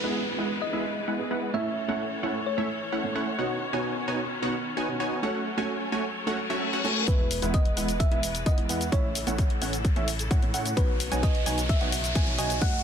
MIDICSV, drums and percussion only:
0, 0, Header, 1, 2, 480
1, 0, Start_track
1, 0, Key_signature, 4, "major"
1, 0, Tempo, 461538
1, 1602, Time_signature, 4, 2, 24, 8
1, 13346, End_track
2, 0, Start_track
2, 0, Title_t, "Drums"
2, 7361, Note_on_c, 9, 36, 106
2, 7361, Note_on_c, 9, 42, 78
2, 7368, Note_on_c, 9, 69, 31
2, 7465, Note_off_c, 9, 36, 0
2, 7465, Note_off_c, 9, 42, 0
2, 7472, Note_off_c, 9, 69, 0
2, 7600, Note_on_c, 9, 46, 105
2, 7607, Note_on_c, 9, 69, 76
2, 7704, Note_off_c, 9, 46, 0
2, 7711, Note_off_c, 9, 69, 0
2, 7721, Note_on_c, 9, 42, 53
2, 7728, Note_on_c, 9, 69, 45
2, 7825, Note_off_c, 9, 42, 0
2, 7832, Note_off_c, 9, 69, 0
2, 7840, Note_on_c, 9, 42, 81
2, 7841, Note_on_c, 9, 36, 114
2, 7847, Note_on_c, 9, 69, 33
2, 7944, Note_off_c, 9, 42, 0
2, 7945, Note_off_c, 9, 36, 0
2, 7951, Note_off_c, 9, 69, 0
2, 7960, Note_on_c, 9, 42, 38
2, 8064, Note_off_c, 9, 42, 0
2, 8080, Note_on_c, 9, 46, 88
2, 8087, Note_on_c, 9, 69, 72
2, 8184, Note_off_c, 9, 46, 0
2, 8191, Note_off_c, 9, 69, 0
2, 8200, Note_on_c, 9, 42, 59
2, 8207, Note_on_c, 9, 69, 46
2, 8304, Note_off_c, 9, 42, 0
2, 8311, Note_off_c, 9, 69, 0
2, 8321, Note_on_c, 9, 36, 112
2, 8321, Note_on_c, 9, 42, 81
2, 8327, Note_on_c, 9, 69, 32
2, 8425, Note_off_c, 9, 36, 0
2, 8425, Note_off_c, 9, 42, 0
2, 8431, Note_off_c, 9, 69, 0
2, 8440, Note_on_c, 9, 42, 38
2, 8544, Note_off_c, 9, 42, 0
2, 8561, Note_on_c, 9, 46, 104
2, 8568, Note_on_c, 9, 69, 76
2, 8665, Note_off_c, 9, 46, 0
2, 8672, Note_off_c, 9, 69, 0
2, 8681, Note_on_c, 9, 42, 56
2, 8688, Note_on_c, 9, 69, 45
2, 8785, Note_off_c, 9, 42, 0
2, 8792, Note_off_c, 9, 69, 0
2, 8800, Note_on_c, 9, 36, 110
2, 8801, Note_on_c, 9, 42, 81
2, 8808, Note_on_c, 9, 69, 31
2, 8904, Note_off_c, 9, 36, 0
2, 8905, Note_off_c, 9, 42, 0
2, 8912, Note_off_c, 9, 69, 0
2, 8921, Note_on_c, 9, 42, 37
2, 9025, Note_off_c, 9, 42, 0
2, 9041, Note_on_c, 9, 46, 87
2, 9048, Note_on_c, 9, 69, 75
2, 9145, Note_off_c, 9, 46, 0
2, 9152, Note_off_c, 9, 69, 0
2, 9161, Note_on_c, 9, 42, 52
2, 9168, Note_on_c, 9, 69, 44
2, 9265, Note_off_c, 9, 42, 0
2, 9272, Note_off_c, 9, 69, 0
2, 9280, Note_on_c, 9, 36, 117
2, 9281, Note_on_c, 9, 42, 74
2, 9288, Note_on_c, 9, 69, 29
2, 9384, Note_off_c, 9, 36, 0
2, 9385, Note_off_c, 9, 42, 0
2, 9392, Note_off_c, 9, 69, 0
2, 9520, Note_on_c, 9, 46, 105
2, 9527, Note_on_c, 9, 69, 73
2, 9624, Note_off_c, 9, 46, 0
2, 9631, Note_off_c, 9, 69, 0
2, 9640, Note_on_c, 9, 42, 52
2, 9647, Note_on_c, 9, 69, 42
2, 9744, Note_off_c, 9, 42, 0
2, 9751, Note_off_c, 9, 69, 0
2, 9760, Note_on_c, 9, 36, 117
2, 9761, Note_on_c, 9, 42, 79
2, 9767, Note_on_c, 9, 69, 33
2, 9864, Note_off_c, 9, 36, 0
2, 9865, Note_off_c, 9, 42, 0
2, 9871, Note_off_c, 9, 69, 0
2, 9881, Note_on_c, 9, 42, 38
2, 9985, Note_off_c, 9, 42, 0
2, 10001, Note_on_c, 9, 46, 91
2, 10008, Note_on_c, 9, 69, 69
2, 10105, Note_off_c, 9, 46, 0
2, 10112, Note_off_c, 9, 69, 0
2, 10121, Note_on_c, 9, 42, 56
2, 10128, Note_on_c, 9, 69, 43
2, 10225, Note_off_c, 9, 42, 0
2, 10232, Note_off_c, 9, 69, 0
2, 10240, Note_on_c, 9, 36, 116
2, 10241, Note_on_c, 9, 42, 75
2, 10248, Note_on_c, 9, 69, 31
2, 10344, Note_off_c, 9, 36, 0
2, 10345, Note_off_c, 9, 42, 0
2, 10352, Note_off_c, 9, 69, 0
2, 10361, Note_on_c, 9, 42, 36
2, 10465, Note_off_c, 9, 42, 0
2, 10481, Note_on_c, 9, 46, 111
2, 10488, Note_on_c, 9, 69, 75
2, 10585, Note_off_c, 9, 46, 0
2, 10592, Note_off_c, 9, 69, 0
2, 10601, Note_on_c, 9, 42, 54
2, 10608, Note_on_c, 9, 69, 44
2, 10705, Note_off_c, 9, 42, 0
2, 10712, Note_off_c, 9, 69, 0
2, 10720, Note_on_c, 9, 36, 122
2, 10721, Note_on_c, 9, 42, 78
2, 10728, Note_on_c, 9, 69, 32
2, 10824, Note_off_c, 9, 36, 0
2, 10825, Note_off_c, 9, 42, 0
2, 10832, Note_off_c, 9, 69, 0
2, 10842, Note_on_c, 9, 42, 36
2, 10946, Note_off_c, 9, 42, 0
2, 10961, Note_on_c, 9, 46, 88
2, 10968, Note_on_c, 9, 69, 71
2, 11065, Note_off_c, 9, 46, 0
2, 11072, Note_off_c, 9, 69, 0
2, 11081, Note_on_c, 9, 42, 55
2, 11088, Note_on_c, 9, 69, 42
2, 11185, Note_off_c, 9, 42, 0
2, 11192, Note_off_c, 9, 69, 0
2, 11200, Note_on_c, 9, 36, 121
2, 11202, Note_on_c, 9, 42, 72
2, 11209, Note_on_c, 9, 69, 30
2, 11304, Note_off_c, 9, 36, 0
2, 11306, Note_off_c, 9, 42, 0
2, 11313, Note_off_c, 9, 69, 0
2, 11441, Note_on_c, 9, 46, 108
2, 11448, Note_on_c, 9, 69, 69
2, 11545, Note_off_c, 9, 46, 0
2, 11552, Note_off_c, 9, 69, 0
2, 11561, Note_on_c, 9, 42, 51
2, 11568, Note_on_c, 9, 69, 42
2, 11665, Note_off_c, 9, 42, 0
2, 11672, Note_off_c, 9, 69, 0
2, 11680, Note_on_c, 9, 36, 124
2, 11681, Note_on_c, 9, 42, 75
2, 11688, Note_on_c, 9, 69, 31
2, 11784, Note_off_c, 9, 36, 0
2, 11785, Note_off_c, 9, 42, 0
2, 11792, Note_off_c, 9, 69, 0
2, 11801, Note_on_c, 9, 42, 37
2, 11905, Note_off_c, 9, 42, 0
2, 11921, Note_on_c, 9, 46, 92
2, 11928, Note_on_c, 9, 69, 71
2, 12025, Note_off_c, 9, 46, 0
2, 12032, Note_off_c, 9, 69, 0
2, 12041, Note_on_c, 9, 42, 54
2, 12048, Note_on_c, 9, 69, 44
2, 12145, Note_off_c, 9, 42, 0
2, 12152, Note_off_c, 9, 69, 0
2, 12161, Note_on_c, 9, 36, 116
2, 12161, Note_on_c, 9, 42, 76
2, 12168, Note_on_c, 9, 69, 31
2, 12265, Note_off_c, 9, 36, 0
2, 12265, Note_off_c, 9, 42, 0
2, 12272, Note_off_c, 9, 69, 0
2, 12281, Note_on_c, 9, 42, 35
2, 12385, Note_off_c, 9, 42, 0
2, 12401, Note_on_c, 9, 46, 111
2, 12408, Note_on_c, 9, 69, 73
2, 12505, Note_off_c, 9, 46, 0
2, 12512, Note_off_c, 9, 69, 0
2, 12521, Note_on_c, 9, 42, 51
2, 12528, Note_on_c, 9, 69, 44
2, 12625, Note_off_c, 9, 42, 0
2, 12632, Note_off_c, 9, 69, 0
2, 12641, Note_on_c, 9, 36, 119
2, 12641, Note_on_c, 9, 42, 74
2, 12648, Note_on_c, 9, 69, 30
2, 12745, Note_off_c, 9, 36, 0
2, 12745, Note_off_c, 9, 42, 0
2, 12752, Note_off_c, 9, 69, 0
2, 12761, Note_on_c, 9, 42, 35
2, 12865, Note_off_c, 9, 42, 0
2, 12881, Note_on_c, 9, 46, 96
2, 12888, Note_on_c, 9, 69, 72
2, 12985, Note_off_c, 9, 46, 0
2, 12992, Note_off_c, 9, 69, 0
2, 13001, Note_on_c, 9, 42, 53
2, 13008, Note_on_c, 9, 69, 41
2, 13105, Note_off_c, 9, 42, 0
2, 13112, Note_off_c, 9, 69, 0
2, 13120, Note_on_c, 9, 42, 70
2, 13121, Note_on_c, 9, 36, 116
2, 13127, Note_on_c, 9, 69, 31
2, 13224, Note_off_c, 9, 42, 0
2, 13225, Note_off_c, 9, 36, 0
2, 13231, Note_off_c, 9, 69, 0
2, 13346, End_track
0, 0, End_of_file